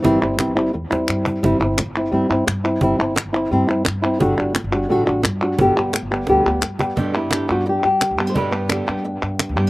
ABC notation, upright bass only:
X:1
M:4/4
L:1/16
Q:1/4=173
K:G
V:1 name="Upright bass" clef=bass
G,,,2 G,,,3 G,,,3 E,,2 E,,2 G,,4 | G,,,2 G,,,3 G,,,3 G,,2 G,,2 G,,4 | G,,,2 G,,,3 G,,,3 G,,2 G,,2 G,,4 | G,,,2 G,,,3 G,,,3 A,,,2 A,,,2 G,,4 |
G,,,2 G,,,3 G,,,3 D,,2 D,,2 G,,4 | G,,6 G,,4 G,,3 D,, G,,2 | G,,6 G,,4 G,,3 D,, G,,2 |]